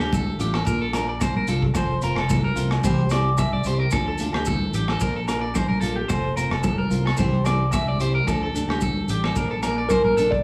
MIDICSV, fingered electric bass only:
0, 0, Header, 1, 2, 480
1, 0, Start_track
1, 0, Tempo, 542986
1, 1552, Time_signature, 4, 2, 24, 8
1, 9224, End_track
2, 0, Start_track
2, 0, Title_t, "Fingered electric bass"
2, 0, Program_c, 0, 33
2, 0, Note_on_c, 0, 38, 88
2, 271, Note_off_c, 0, 38, 0
2, 343, Note_on_c, 0, 33, 83
2, 537, Note_off_c, 0, 33, 0
2, 589, Note_on_c, 0, 34, 96
2, 1071, Note_off_c, 0, 34, 0
2, 1190, Note_on_c, 0, 34, 79
2, 1283, Note_off_c, 0, 34, 0
2, 1306, Note_on_c, 0, 36, 84
2, 1498, Note_off_c, 0, 36, 0
2, 1545, Note_on_c, 0, 29, 104
2, 1738, Note_off_c, 0, 29, 0
2, 1787, Note_on_c, 0, 29, 86
2, 1889, Note_off_c, 0, 29, 0
2, 1910, Note_on_c, 0, 29, 83
2, 2192, Note_off_c, 0, 29, 0
2, 2263, Note_on_c, 0, 36, 87
2, 2456, Note_off_c, 0, 36, 0
2, 2512, Note_on_c, 0, 36, 99
2, 2992, Note_off_c, 0, 36, 0
2, 3118, Note_on_c, 0, 36, 81
2, 3207, Note_off_c, 0, 36, 0
2, 3223, Note_on_c, 0, 36, 89
2, 3416, Note_off_c, 0, 36, 0
2, 3470, Note_on_c, 0, 38, 103
2, 3660, Note_off_c, 0, 38, 0
2, 3708, Note_on_c, 0, 38, 86
2, 3810, Note_off_c, 0, 38, 0
2, 3826, Note_on_c, 0, 38, 87
2, 4110, Note_off_c, 0, 38, 0
2, 4174, Note_on_c, 0, 33, 85
2, 4371, Note_off_c, 0, 33, 0
2, 4429, Note_on_c, 0, 34, 104
2, 4910, Note_off_c, 0, 34, 0
2, 5032, Note_on_c, 0, 34, 79
2, 5123, Note_off_c, 0, 34, 0
2, 5138, Note_on_c, 0, 34, 86
2, 5333, Note_off_c, 0, 34, 0
2, 5389, Note_on_c, 0, 29, 108
2, 5579, Note_off_c, 0, 29, 0
2, 5623, Note_on_c, 0, 29, 79
2, 5726, Note_off_c, 0, 29, 0
2, 5748, Note_on_c, 0, 29, 94
2, 6031, Note_off_c, 0, 29, 0
2, 6103, Note_on_c, 0, 36, 82
2, 6296, Note_off_c, 0, 36, 0
2, 6357, Note_on_c, 0, 36, 98
2, 6835, Note_off_c, 0, 36, 0
2, 6940, Note_on_c, 0, 36, 79
2, 7036, Note_off_c, 0, 36, 0
2, 7053, Note_on_c, 0, 36, 85
2, 7250, Note_off_c, 0, 36, 0
2, 7309, Note_on_c, 0, 38, 98
2, 7499, Note_off_c, 0, 38, 0
2, 7542, Note_on_c, 0, 38, 79
2, 7646, Note_off_c, 0, 38, 0
2, 7667, Note_on_c, 0, 38, 89
2, 7950, Note_off_c, 0, 38, 0
2, 8024, Note_on_c, 0, 33, 83
2, 8216, Note_off_c, 0, 33, 0
2, 8272, Note_on_c, 0, 34, 94
2, 8753, Note_off_c, 0, 34, 0
2, 8878, Note_on_c, 0, 34, 75
2, 8967, Note_off_c, 0, 34, 0
2, 8989, Note_on_c, 0, 34, 79
2, 9180, Note_off_c, 0, 34, 0
2, 9224, End_track
0, 0, End_of_file